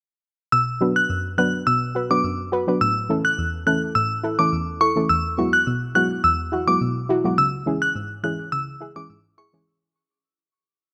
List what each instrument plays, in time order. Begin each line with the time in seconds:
0.52 synth pluck B2, synth bell E6
0.81 synth pluck F#3 B3 D4 F#4 B4
0.96 synth bell F#6
1.10 synth pluck F#2
1.38 synth pluck F#3 B3 D4 F#4 B4, synth bell F#6
1.67 synth pluck B2, synth bell E6
1.95 synth pluck F#4 B4
2.10 synth pluck F#3 B3 D4 F#4 B4, synth bell D6
2.24 synth pluck F#2
2.52 synth pluck F#4 B4
2.67 synth pluck F#3 B3 D4 F#4 B4
2.81 synth pluck A2, synth bell E6
3.09 synth pluck E3 A3 C#4 E4 A4
3.25 synth bell F#6
3.38 synth pluck E2
3.66 synth pluck E3 A3 C#4 E4 A4, synth bell F#6
3.95 synth pluck A2, synth bell E6
4.23 synth pluck E4 A4
4.39 synth pluck E3 A3 C#4 E4 A4, synth bell D6
4.53 synth pluck E2
4.81 synth pluck E4 A4, synth bell C#6
4.96 synth pluck E3 A3 C#4 E4 A4
5.09 synth pluck E2, synth bell E6
5.38 synth pluck F#3 G#3 B3 E4 F#4
5.53 synth bell F#6
5.67 synth pluck B2
5.95 synth pluck F#3 G#3 B3 E4 F#4, synth bell F#6
6.24 synth pluck E2, synth bell E6
6.52 synth pluck E4 F#4
6.67 synth pluck F#3 G#3 B3 E4 F#4, synth bell D6
6.81 synth pluck B2
7.09 synth pluck E4 F#4
7.24 synth pluck F#3 G#3 B3 E4 F#4
7.38 synth pluck C#3, synth bell E6
7.66 synth pluck E3 G#3 C#4 E4 G#4
7.82 synth bell F#6
7.95 synth pluck G#2
8.23 synth pluck E3 G#3 C#4 E4 G#4, synth bell F#6
8.52 synth pluck C#3, synth bell E6
8.80 synth pluck E4 G#4
8.96 synth pluck E3 G#3 C#4 E4 G#4, synth bell D6
9.10 synth pluck G#2
9.38 synth pluck E4 G#4, synth bell C#6
9.53 synth pluck E3 G#3 C#4 E4 G#4